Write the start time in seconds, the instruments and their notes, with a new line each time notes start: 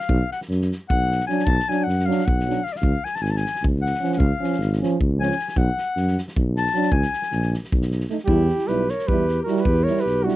Already playing: clarinet F5
0.00 snare
0.09 tuba B1, kick
0.31 clarinet F#5, snare
0.41 snare
0.49 tuba F#2, snare
0.61 snare
0.72 snare
0.89 tuba B1, clarinet F#5, kick
1.11 snare
1.20 snare
1.27 trombone F#3, french horn D4, clarinet G#5, snare
1.39 snare
1.45 tuba B1, clarinet A5, kick
1.59 snare
1.68 trombone F#3, french horn D4, clarinet G#5, snare
1.83 tuba F#2, clarinet F#5
1.88 snare
1.99 snare
2.06 trombone F#3, french horn D4, clarinet F5
2.11 snare
2.19 snare
2.25 tuba B1, clarinet F#5, kick
2.40 snare
2.46 trombone F#3, french horn D4
2.50 snare
2.64 clarinet F5, snare
2.73 clarinet D5 F5, snare
2.82 tuba C#2, kick
3.04 clarinet G#5, snare
3.15 clarinet A5, snare
3.21 tuba G#1, clarinet G#5, snare
3.30 clarinet A5
3.36 clarinet G#5, snare
3.46 snare
3.55 snare
3.62 tuba C#2, kick
3.82 clarinet F#5, snare
3.94 snare
4.00 trombone F3, french horn C#4, snare
4.12 clarinet F#5, snare
4.18 tuba C#2, clarinet F5, kick
4.40 trombone F3, french horn C#4, snare
4.52 snare
4.58 tuba G#1, snare
4.72 snare
4.80 trombone F3, french horn C#4, snare
5.00 tuba C#2, kick
5.18 trombone F3, french horn C#4, clarinet G#5, snare
5.31 snare
5.39 snare
5.48 clarinet G#5, snare
5.56 tuba B1, clarinet F#5, kick
5.78 snare
5.96 tuba F#2, snare
6.07 snare
6.18 snare
6.28 snare
6.36 tuba B1, kick
6.56 clarinet A5, snare
6.66 snare
6.74 trombone F#3, french horn D4, snare
6.82 snare
6.92 tuba C#2, clarinet G#5, kick
7.02 snare
7.13 snare
7.22 snare
7.31 tuba A#1, snare
7.42 snare
7.53 snare
7.64 snare
7.72 tuba B1, kick
7.81 snare
7.91 snare
8.00 snare
8.09 trombone A3, french horn D#4, snare
8.18 snare
8.25 tuba E2, trombone G3, clarinet E4, flugelhorn G4, kick
8.30 french horn E4
8.49 snare
8.58 snare
8.66 tuba B1, trombone G3, french horn E4, clarinet G4, flugelhorn B4, snare
8.88 clarinet A#4, flugelhorn C#5, snare
8.99 snare
9.07 tuba E2, trombone G3, french horn E4, clarinet G4, flugelhorn B4, kick
9.28 snare
9.43 clarinet F#4, flugelhorn A#4
9.47 trombone G3, french horn E4, snare
9.56 snare
9.60 clarinet G4, flugelhorn B4
9.65 tuba E2, kick
9.83 trombone G3, clarinet A#4, flugelhorn C#5
9.87 french horn E4, snare
9.97 flugelhorn B4, snare
10.02 tuba B1, clarinet G4
10.06 snare
10.23 trombone G3, clarinet D4, french horn E4, flugelhorn F#4
10.28 snare